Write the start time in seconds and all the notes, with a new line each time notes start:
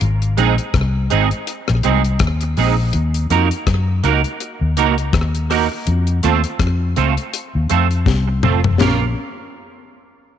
0.01 G#1, closed hi-hat
0.22 closed hi-hat
0.37 A#1 G#3 C4 D#4 G#4, closed hi-hat
0.58 closed hi-hat
0.74 C2, kick, cross-stick, closed hi-hat
1.10 G#1 G#3 C4 D#4 G#4, closed hi-hat
1.31 closed hi-hat
1.47 closed hi-hat
1.68 A#1, cross-stick
1.83 C2 G#3 C4 D#4 G#4, closed hi-hat
2.04 closed hi-hat
2.19 D#2, kick, cross-stick, closed hi-hat
2.41 muted clean electric guitar stroke, closed hi-hat
2.57 A#1 G#3 C4 D#4 G#4, open hi-hat
2.93 D#2, closed hi-hat
3.14 closed hi-hat
3.30 F2 A#3 D#4 F#4 A#4, closed hi-hat
3.51 closed hi-hat
3.67 F#2, kick, cross-stick, closed hi-hat
4.04 C#2 A#3 D#4 F#4 A#4, closed hi-hat
4.24 closed hi-hat
4.40 closed hi-hat
4.61 D#2
4.77 C#2 A#3 D#4 F#4 A#4, closed hi-hat
4.98 closed hi-hat
5.13 D#2, kick, cross-stick, closed hi-hat
5.35 closed hi-hat
5.50 A#3 D#4 F#4 A#4, cross-stick, open hi-hat
5.72 muted clean electric guitar stroke
5.87 F2, closed hi-hat
6.07 closed hi-hat
6.23 D#2 A3 C4 F4 A4, closed hi-hat
6.44 closed hi-hat
6.59 F2, kick, cross-stick, closed hi-hat
6.96 C#2 A3 C4 F4 A4, closed hi-hat
7.17 closed hi-hat
7.34 closed hi-hat
7.55 D#2
7.70 F2 A3 C4 F4 A4, closed hi-hat
7.91 closed hi-hat
8.06 C2, kick, snare
8.28 muted clean electric guitar stroke
8.43 F1 A3 C4 F4 A4, mid tom
8.64 floor tom
8.80 A#1 A#3 C#4 F4 A#4, snare, floor tom, crash